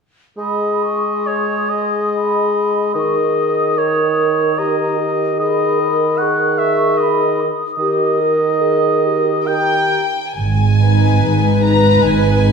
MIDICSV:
0, 0, Header, 1, 10, 480
1, 0, Start_track
1, 0, Key_signature, 5, "minor"
1, 0, Tempo, 873362
1, 211, Time_signature, 3, 2, 24, 8
1, 1171, Tempo, 809717
1, 5011, Tempo, 859599
1, 5491, Tempo, 917431
1, 5971, Tempo, 826446
1, 7211, End_track
2, 0, Start_track
2, 0, Title_t, "Flute section"
2, 0, Program_c, 0, 73
2, 209, Note_on_c, 0, 83, 27
2, 435, Note_off_c, 0, 83, 0
2, 452, Note_on_c, 0, 85, 27
2, 696, Note_off_c, 0, 85, 0
2, 700, Note_on_c, 0, 87, 26
2, 1167, Note_on_c, 0, 83, 27
2, 1173, Note_off_c, 0, 87, 0
2, 1650, Note_off_c, 0, 83, 0
2, 1653, Note_on_c, 0, 85, 27
2, 1894, Note_on_c, 0, 87, 27
2, 1897, Note_off_c, 0, 85, 0
2, 2622, Note_off_c, 0, 87, 0
2, 2628, Note_on_c, 0, 82, 29
2, 2925, Note_off_c, 0, 82, 0
2, 3107, Note_on_c, 0, 83, 31
2, 3569, Note_off_c, 0, 83, 0
2, 3583, Note_on_c, 0, 85, 37
2, 4056, Note_off_c, 0, 85, 0
2, 4062, Note_on_c, 0, 83, 36
2, 4292, Note_off_c, 0, 83, 0
2, 4294, Note_on_c, 0, 87, 35
2, 5494, Note_off_c, 0, 87, 0
2, 5496, Note_on_c, 0, 82, 34
2, 5789, Note_off_c, 0, 82, 0
2, 7211, End_track
3, 0, Start_track
3, 0, Title_t, "Violin section"
3, 0, Program_c, 1, 48
3, 5492, Note_on_c, 1, 79, 51
3, 5950, Note_off_c, 1, 79, 0
3, 5976, Note_on_c, 1, 80, 43
3, 6700, Note_off_c, 1, 80, 0
3, 6705, Note_on_c, 1, 82, 52
3, 6933, Note_off_c, 1, 82, 0
3, 6938, Note_on_c, 1, 80, 50
3, 7211, Note_off_c, 1, 80, 0
3, 7211, End_track
4, 0, Start_track
4, 0, Title_t, "Oboe"
4, 0, Program_c, 2, 68
4, 214, Note_on_c, 2, 75, 27
4, 696, Note_on_c, 2, 73, 26
4, 705, Note_off_c, 2, 75, 0
4, 931, Note_on_c, 2, 75, 29
4, 939, Note_off_c, 2, 73, 0
4, 1649, Note_off_c, 2, 75, 0
4, 1652, Note_on_c, 2, 75, 27
4, 2149, Note_on_c, 2, 73, 30
4, 2158, Note_off_c, 2, 75, 0
4, 2627, Note_on_c, 2, 75, 30
4, 2636, Note_off_c, 2, 73, 0
4, 3105, Note_off_c, 2, 75, 0
4, 3107, Note_on_c, 2, 75, 33
4, 3570, Note_on_c, 2, 78, 35
4, 3579, Note_off_c, 2, 75, 0
4, 3812, Note_on_c, 2, 76, 43
4, 3820, Note_off_c, 2, 78, 0
4, 4045, Note_on_c, 2, 75, 35
4, 4053, Note_off_c, 2, 76, 0
4, 4362, Note_off_c, 2, 75, 0
4, 4522, Note_on_c, 2, 75, 39
4, 5491, Note_on_c, 2, 79, 33
4, 5499, Note_off_c, 2, 75, 0
4, 5793, Note_off_c, 2, 79, 0
4, 7211, End_track
5, 0, Start_track
5, 0, Title_t, "Viola section"
5, 0, Program_c, 3, 48
5, 6466, Note_on_c, 3, 71, 38
5, 7211, Note_off_c, 3, 71, 0
5, 7211, End_track
6, 0, Start_track
6, 0, Title_t, "Clarinet"
6, 0, Program_c, 4, 71
6, 204, Note_on_c, 4, 68, 32
6, 2143, Note_on_c, 4, 70, 29
6, 2151, Note_off_c, 4, 68, 0
6, 2622, Note_off_c, 4, 70, 0
6, 2626, Note_on_c, 4, 67, 31
6, 2861, Note_off_c, 4, 67, 0
6, 2868, Note_on_c, 4, 67, 31
6, 3105, Note_on_c, 4, 68, 38
6, 3113, Note_off_c, 4, 67, 0
6, 3340, Note_on_c, 4, 70, 34
6, 3349, Note_off_c, 4, 68, 0
6, 3594, Note_on_c, 4, 68, 33
6, 3603, Note_off_c, 4, 70, 0
6, 4375, Note_off_c, 4, 68, 0
6, 4529, Note_on_c, 4, 67, 45
6, 4772, Note_on_c, 4, 70, 38
6, 4781, Note_off_c, 4, 67, 0
6, 5011, Note_on_c, 4, 68, 39
6, 5020, Note_off_c, 4, 70, 0
6, 5259, Note_on_c, 4, 67, 43
6, 5267, Note_off_c, 4, 68, 0
6, 5492, Note_off_c, 4, 67, 0
6, 5495, Note_on_c, 4, 67, 35
6, 5789, Note_off_c, 4, 67, 0
6, 7211, End_track
7, 0, Start_track
7, 0, Title_t, "Violin section"
7, 0, Program_c, 5, 48
7, 6221, Note_on_c, 5, 63, 27
7, 6223, Note_on_c, 5, 71, 26
7, 6689, Note_off_c, 5, 63, 0
7, 6690, Note_off_c, 5, 71, 0
7, 6700, Note_on_c, 5, 63, 28
7, 6701, Note_on_c, 5, 71, 32
7, 7164, Note_off_c, 5, 63, 0
7, 7164, Note_off_c, 5, 71, 0
7, 7172, Note_on_c, 5, 63, 33
7, 7173, Note_on_c, 5, 71, 37
7, 7211, Note_off_c, 5, 63, 0
7, 7211, Note_off_c, 5, 71, 0
7, 7211, End_track
8, 0, Start_track
8, 0, Title_t, "Bassoon"
8, 0, Program_c, 6, 70
8, 206, Note_on_c, 6, 56, 27
8, 1636, Note_off_c, 6, 56, 0
8, 1657, Note_on_c, 6, 51, 32
8, 4340, Note_off_c, 6, 51, 0
8, 4524, Note_on_c, 6, 51, 42
8, 5772, Note_off_c, 6, 51, 0
8, 7211, End_track
9, 0, Start_track
9, 0, Title_t, "Cello section"
9, 0, Program_c, 7, 48
9, 5974, Note_on_c, 7, 44, 34
9, 6406, Note_off_c, 7, 44, 0
9, 6460, Note_on_c, 7, 44, 34
9, 6878, Note_off_c, 7, 44, 0
9, 6937, Note_on_c, 7, 44, 35
9, 7211, Note_off_c, 7, 44, 0
9, 7211, End_track
10, 0, Start_track
10, 0, Title_t, "Double bass section"
10, 0, Program_c, 8, 48
10, 5973, Note_on_c, 8, 32, 35
10, 6405, Note_off_c, 8, 32, 0
10, 6466, Note_on_c, 8, 32, 36
10, 6881, Note_off_c, 8, 32, 0
10, 6936, Note_on_c, 8, 32, 40
10, 7211, Note_off_c, 8, 32, 0
10, 7211, End_track
0, 0, End_of_file